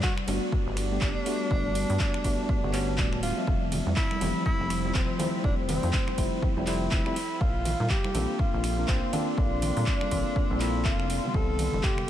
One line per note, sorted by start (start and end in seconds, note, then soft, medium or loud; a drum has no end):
0.00 4.88 G3 loud
0.00 0.14 F#4 loud
0.00 4.13 D5 medium
0.00 kick loud
0.00 clap loud
0.18 finger snap medium
0.27 0.39 G1 medium
0.27 0.87 G3 medium
0.27 0.88 A3 medium
0.27 0.88 B3 medium
0.27 2.70 D4 loud
0.27 0.88 D4 medium
0.27 0.88 F#4 loud
0.27 open hi-hat loud
0.27 ride medium
0.46 4.33 A5 medium
0.52 kick loud
0.67 0.98 G1 loud
0.77 finger snap medium
0.77 open hi-hat loud
0.77 ride medium
0.91 1.23 G3 medium
0.91 1.24 A3 medium
0.91 1.24 B3 medium
0.91 1.24 D4 medium
0.91 1.24 G4 medium
1.01 1.13 G1 medium
1.01 kick loud
1.01 clap loud
1.25 2.22 G3 loud
1.25 2.22 A3 medium
1.25 2.22 B3 medium
1.25 2.22 D4 medium
1.25 2.23 F#4 loud
1.25 open hi-hat loud
1.25 ride medium
1.51 1.85 G1 loud
1.51 kick loud
1.75 open hi-hat loud
1.75 ride medium
1.90 1.98 G2 loud
1.90 open hi-hat medium
1.99 kick loud
1.99 clap loud
2.14 finger snap medium
2.24 2.36 G1 medium
2.24 2.60 G3 medium
2.24 2.60 A3 medium
2.24 2.60 B3 medium
2.24 2.60 D4 medium
2.24 2.60 F#4 medium
2.24 kick medium
2.24 open hi-hat loud
2.24 ride medium
2.49 kick loud
2.63 3.00 G1 loud
2.63 2.71 G3 medium
2.63 2.71 A3 medium
2.63 2.71 B3 medium
2.63 2.71 D4 medium
2.63 2.71 F#4 loud
2.73 3.33 G3 medium
2.73 3.34 A3 medium
2.73 3.34 B3 medium
2.73 3.00 C#4 medium
2.73 3.34 D4 medium
2.73 3.34 F#4 medium
2.73 clap medium
2.73 open hi-hat loud
2.73 ride medium
2.98 3.32 D1 medium
2.98 3.22 D4 medium
2.98 kick loud
2.98 clap loud
3.13 finger snap medium
3.23 3.67 F4 medium
3.23 open hi-hat loud
3.23 ride medium
3.36 4.18 F3 medium
3.36 4.19 G3 medium
3.36 4.19 A3 medium
3.36 4.19 C4 medium
3.36 4.19 E5 loud
3.47 3.82 F1 loud
3.47 8.40 F3 medium
3.47 kick loud
3.72 open hi-hat loud
3.72 ride medium
3.72 low conga medium
3.86 3.94 F2 medium
3.86 high conga medium
3.93 4.42 E4 loud
3.93 8.76 C5 medium
3.93 kick loud
3.93 clap loud
4.05 8.79 G5 medium
4.11 finger snap medium
4.11 high conga medium
4.20 4.33 F1 medium
4.20 4.81 F3 medium
4.20 4.81 G3 medium
4.20 4.81 A3 medium
4.20 4.82 C4 medium
4.20 4.82 E4 loud
4.20 open hi-hat loud
4.20 ride medium
4.20 low conga medium
4.46 4.97 E4 loud
4.46 kick loud
4.60 4.92 F1 loud
4.70 finger snap medium
4.70 open hi-hat loud
4.70 ride medium
4.84 5.17 F3 medium
4.84 5.17 G3 medium
4.84 5.17 A3 medium
4.84 5.17 C4 medium
4.84 5.17 F4 medium
4.94 5.06 F1 medium
4.94 5.44 C4 loud
4.94 kick loud
4.94 clap loud
5.19 6.15 F3 loud
5.19 6.15 G3 medium
5.19 6.15 A3 medium
5.19 6.16 C4 medium
5.19 6.16 E4 loud
5.19 open hi-hat loud
5.19 ride medium
5.19 low conga loud
5.44 5.78 F1 loud
5.44 5.55 D4 loud
5.44 kick loud
5.69 6.39 C4 medium
5.69 open hi-hat loud
5.69 ride medium
5.69 low conga medium
5.83 5.91 F2 medium
5.83 open hi-hat medium
5.83 high conga medium
5.93 kick loud
5.93 clap loud
6.08 finger snap medium
6.08 high conga medium
6.17 6.29 F1 medium
6.17 6.53 F3 medium
6.17 6.53 G3 medium
6.17 6.53 A3 medium
6.17 6.54 C4 medium
6.17 6.54 E4 loud
6.17 kick medium
6.17 open hi-hat loud
6.17 ride medium
6.42 kick loud
6.56 6.88 F1 loud
6.56 6.64 F3 medium
6.56 6.65 G3 medium
6.56 6.65 A3 medium
6.56 6.65 C4 medium
6.56 6.65 E4 loud
6.56 high conga medium
6.67 7.02 F3 loud
6.67 7.03 G3 medium
6.67 7.03 A3 medium
6.67 6.93 C4 medium
6.67 7.03 C4 medium
6.67 7.03 E4 loud
6.67 clap medium
6.67 open hi-hat loud
6.67 ride medium
6.91 7.03 F1 loud
6.91 7.42 E4 medium
6.91 kick loud
6.91 clap loud
7.06 7.14 F3 loud
7.06 7.14 G3 medium
7.06 7.14 A3 medium
7.06 7.14 C4 medium
7.06 7.15 E4 loud
7.06 finger snap medium
7.16 open hi-hat loud
7.16 ride medium
7.41 7.75 A#1 loud
7.41 11.34 A#3 medium
7.41 7.92 F4 loud
7.41 kick loud
7.65 open hi-hat loud
7.65 ride medium
7.65 low conga medium
7.77 7.88 A#2 medium
7.77 12.10 C6 medium
7.77 high conga medium
7.88 8.41 G4 loud
7.88 11.34 F5 medium
7.88 kick loud
7.88 clap loud
8.04 finger snap medium
8.04 high conga medium
8.14 8.26 A#1 medium
8.14 8.74 A#3 medium
8.14 8.75 C4 medium
8.14 8.75 D4 medium
8.14 8.75 F4 medium
8.14 8.75 A4 loud
8.14 open hi-hat loud
8.14 ride medium
8.14 low conga medium
8.39 8.90 F4 loud
8.39 kick loud
8.54 8.85 A#1 loud
8.64 finger snap medium
8.64 open hi-hat loud
8.64 ride medium
8.78 9.10 A#3 medium
8.78 9.10 C4 medium
8.78 9.11 D4 medium
8.78 9.11 F4 medium
8.78 9.11 A#4 loud
8.88 9.00 A#1 loud
8.88 9.14 C4 medium
8.88 kick loud
8.88 clap loud
9.12 10.08 A#3 medium
9.12 10.09 C4 medium
9.12 10.09 D4 medium
9.12 10.62 D4 loud
9.12 10.09 F4 medium
9.12 10.09 A4 loud
9.12 open hi-hat loud
9.12 ride medium
9.12 low conga loud
9.38 9.72 A#1 medium
9.38 kick loud
9.62 open hi-hat loud
9.62 ride medium
9.62 low conga medium
9.77 9.85 A#2 medium
9.77 open hi-hat medium
9.77 high conga medium
9.86 kick loud
9.86 clap loud
10.01 finger snap medium
10.01 high conga medium
10.11 10.23 A#1 medium
10.11 10.47 A#3 medium
10.11 10.47 C4 medium
10.11 10.47 D4 medium
10.11 10.47 F4 medium
10.11 10.47 A4 loud
10.11 kick medium
10.11 open hi-hat loud
10.11 ride medium
10.11 low conga medium
10.36 kick loud
10.50 10.87 A#1 loud
10.50 10.58 A#3 medium
10.50 10.58 C4 medium
10.50 10.58 D4 medium
10.50 10.58 F4 medium
10.50 10.58 A4 loud
10.50 high conga medium
10.60 11.20 A#3 medium
10.60 11.20 C4 medium
10.60 11.21 D4 medium
10.60 10.85 E4 loud
10.60 11.21 F4 medium
10.60 11.21 A4 medium
10.60 clap medium
10.60 open hi-hat loud
10.60 ride medium
10.85 11.19 F1 medium
10.85 11.36 F4 loud
10.85 kick loud
10.85 clap loud
11.00 finger snap medium
11.10 open hi-hat loud
11.10 ride medium
11.23 12.05 C3 medium
11.23 12.05 D3 medium
11.23 12.06 E3 medium
11.23 12.06 G3 medium
11.23 12.06 B3 loud
11.34 11.69 C2 loud
11.34 11.85 A4 loud
11.34 kick loud
11.59 open hi-hat loud
11.59 ride medium
11.59 low conga medium
11.73 11.81 G1 medium
11.73 12.10 G3 loud
11.73 high conga medium
11.83 12.10 G4 loud
11.83 kick loud
11.83 clap loud
11.98 finger snap medium
11.98 high conga medium